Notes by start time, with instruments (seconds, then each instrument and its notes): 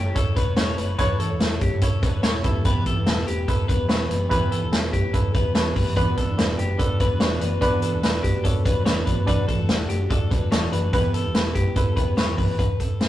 Already playing: fingered electric bass F#1, reed electric piano E4 A4 C#5, clean electric guitar G4
0.04 twelve-string acoustic guitar E4 A4 C#5
0.15 fingered electric bass E1, reed electric piano E4 A4 C#5, clean electric guitar A4, kick, closed hi-hat
0.36 fingered electric bass E1, twelve-string acoustic guitar A3 E4 A4 C#5, clean electric guitar B4, kick, closed hi-hat
0.57 fingered electric bass E1, twelve-string acoustic guitar A3 E4 A4 C#5, reed electric piano E4 A4 C#5, clean electric guitar C#5, snare, closed hi-hat
0.77 fingered electric bass F#1, twelve-string acoustic guitar A3 E4 A4 C#5, clean electric guitar B4, closed hi-hat
0.98 fingered electric bass E1, twelve-string acoustic guitar E3 A3 E4 A4 C#5, reed electric piano E4 A4 C#5, clean electric guitar B4, kick, closed hi-hat
1.20 clean electric guitar A4, closed hi-hat
1.30 fingered electric bass E1, twelve-string acoustic guitar E4 A4 C#5
1.40 fingered electric bass E1, reed electric piano E4 A4 E5, snare, closed hi-hat
1.61 fingered electric bass F#1, clean electric guitar G4, kick, closed hi-hat
1.71 twelve-string acoustic guitar E4 A4 C#5
1.81 fingered electric bass E1, reed electric piano E4 A4 C#5, clean electric guitar A4, kick, closed hi-hat
2.01 fingered electric bass E1, twelve-string acoustic guitar A3 E4 A4 C#5, clean electric guitar B4, kick, closed hi-hat
2.22 fingered electric bass E1, twelve-string acoustic guitar A3 E4 A4 C#5, reed electric piano E4 A4 C#5, clean electric guitar C#5, snare, closed hi-hat
2.43 fingered electric bass E1, twelve-string acoustic guitar E3 B3 E4 G4, reed electric piano E4 G4 B4, clean electric guitar A4, kick, closed hi-hat
2.64 twelve-string acoustic guitar E3 B3 E4 G4, clean electric guitar B4, kick, closed hi-hat
2.86 clean electric guitar A4, kick, closed hi-hat
2.95 fingered electric bass E1, twelve-string acoustic guitar B3 E4 G4
3.06 fingered electric bass E1, reed electric piano E4 G4 B4, snare, closed hi-hat
3.28 fingered electric bass E1, clean electric guitar G4, closed hi-hat
3.37 twelve-string acoustic guitar B3 E4 G4
3.48 fingered electric bass E1, reed electric piano E4 G4 B4, clean electric guitar A4, kick, closed hi-hat
3.68 fingered electric bass E1, twelve-string acoustic guitar E3 B3 E4 G4, clean electric guitar B4, kick, closed hi-hat
3.88 fingered electric bass E1, twelve-string acoustic guitar E3 B3 E4 G4, reed electric piano E4 G4 B4, clean electric guitar C#5, snare, closed hi-hat
4.10 fingered electric bass F#1, twelve-string acoustic guitar E3 B3 E4 G4, clean electric guitar B4, closed hi-hat
4.29 fingered electric bass E1, twelve-string acoustic guitar E3 B3 E4 G4, reed electric piano E4 G4 B4, clean electric guitar B4, kick, closed hi-hat
4.52 clean electric guitar A4, closed hi-hat
4.62 fingered electric bass E1, twelve-string acoustic guitar B3 E4 G4
4.72 fingered electric bass E1, reed electric piano E4 G4 C#5, snare, closed hi-hat
4.93 fingered electric bass F#1, clean electric guitar G4, kick, closed hi-hat
5.03 twelve-string acoustic guitar B3 E4 G4
5.13 fingered electric bass E1, reed electric piano E4 G4 B4, clean electric guitar A4, kick, closed hi-hat
5.34 fingered electric bass E1, twelve-string acoustic guitar E3 B3 E4 G4, clean electric guitar B4, kick, closed hi-hat
5.55 fingered electric bass E1, twelve-string acoustic guitar E3 B3 E4 G4, reed electric piano E4 G4 B4, clean electric guitar C#5, snare, closed hi-hat
5.75 fingered electric bass F#1, twelve-string acoustic guitar E3 B3 E4 G4, clean electric guitar B4, kick, open hi-hat
5.96 fingered electric bass E1, twelve-string acoustic guitar E3 B3 D4 F#4, reed electric piano D4 F#4 B4, clean electric guitar B4, kick, closed hi-hat
6.17 clean electric guitar A4, kick, closed hi-hat
6.27 fingered electric bass E1, twelve-string acoustic guitar B3 D4 F#4
6.38 fingered electric bass E1, reed electric piano D4 F#4 B4, snare, closed hi-hat
6.58 fingered electric bass F#1, clean electric guitar G4, closed hi-hat
6.68 twelve-string acoustic guitar B3 D4 F#4
6.78 fingered electric bass E1, reed electric piano D4 F#4 B4, clean electric guitar A4, kick, closed hi-hat
6.99 fingered electric bass E1, twelve-string acoustic guitar E3 B3 D4 F#4, clean electric guitar B4, kick, closed hi-hat
7.20 fingered electric bass E1, twelve-string acoustic guitar E3 B3 D4 F#4, reed electric piano D4 F#4 B4, clean electric guitar C#5, snare, closed hi-hat
7.40 fingered electric bass F#1, twelve-string acoustic guitar E3 B3 D4 F#4, clean electric guitar B4, closed hi-hat
7.61 fingered electric bass E1, twelve-string acoustic guitar E3 B3 D4 F#4, reed electric piano D4 F#4 B4, clean electric guitar B4, kick, closed hi-hat
7.82 clean electric guitar A4, closed hi-hat
7.91 fingered electric bass E1, twelve-string acoustic guitar B3 D4 F#4
8.03 fingered electric bass E1, reed electric piano D4 F#4 B4, snare, closed hi-hat
8.23 fingered electric bass F#1, clean electric guitar G4, kick, closed hi-hat
8.33 twelve-string acoustic guitar B3 D4 F#4
8.44 fingered electric bass E1, reed electric piano D4 F#4 C#5, clean electric guitar A4, kick, closed hi-hat
8.65 fingered electric bass E1, twelve-string acoustic guitar E3 B3 D4 F#4, clean electric guitar B4, kick, closed hi-hat
8.85 fingered electric bass E1, twelve-string acoustic guitar E3 B3 D4 F#4, reed electric piano D4 F#4 B4, clean electric guitar C#5, snare, closed hi-hat
9.06 fingered electric bass F#1, twelve-string acoustic guitar E3 B3 D4 F#4, clean electric guitar B4, kick, closed hi-hat
9.27 fingered electric bass E1, twelve-string acoustic guitar E3 A3 D4 F#4, reed electric piano D4 F#4 A4, clean electric guitar B4, kick, closed hi-hat
9.48 clean electric guitar A4, kick, closed hi-hat
9.58 fingered electric bass E1, twelve-string acoustic guitar A3 D4 F#4
9.68 fingered electric bass E1, reed electric piano D4 F#4 A4, snare, closed hi-hat
9.89 fingered electric bass F#1, clean electric guitar G4, closed hi-hat
9.99 twelve-string acoustic guitar A3 D4 F#4
10.10 fingered electric bass E1, reed electric piano D4 F#4 A4, clean electric guitar A4, kick, closed hi-hat
10.31 fingered electric bass E1, twelve-string acoustic guitar E3 A3 D4 F#4, clean electric guitar B4, kick, closed hi-hat
10.51 fingered electric bass E1, twelve-string acoustic guitar E3 A3 D4 F#4, reed electric piano D4 F#4 A4, clean electric guitar C#5, snare, closed hi-hat
10.72 fingered electric bass F#1, twelve-string acoustic guitar E3 A3 D4 F#4, clean electric guitar B4, closed hi-hat
10.93 fingered electric bass E1, twelve-string acoustic guitar E3 B3 E4 G4, reed electric piano E4 G4 B4, clean electric guitar B4, kick, closed hi-hat
11.14 clean electric guitar A4, closed hi-hat
11.24 fingered electric bass E1, twelve-string acoustic guitar B3 E4 G4
11.35 fingered electric bass E1, reed electric piano E4 G4 B4, snare, closed hi-hat
11.55 fingered electric bass F#1, clean electric guitar G4, kick, closed hi-hat
11.65 twelve-string acoustic guitar B3 E4 G4
11.76 fingered electric bass E1, reed electric piano E4 G4 B4, clean electric guitar A4, kick, closed hi-hat
11.96 fingered electric bass E1, twelve-string acoustic guitar E3 B3 E4 G4, clean electric guitar B4, kick, closed hi-hat
12.16 fingered electric bass E1, twelve-string acoustic guitar E3 B3 E4 G4, reed electric piano E4 G4 B4, clean electric guitar C#5, snare, closed hi-hat
12.37 fingered electric bass F#1, twelve-string acoustic guitar E3 B3 E4 G4, clean electric guitar B4, kick, open hi-hat
12.59 fingered electric bass E1, clean electric guitar B4, kick, closed hi-hat
12.80 clean electric guitar A4, kick, closed hi-hat
13.00 fingered electric bass E1, snare, closed hi-hat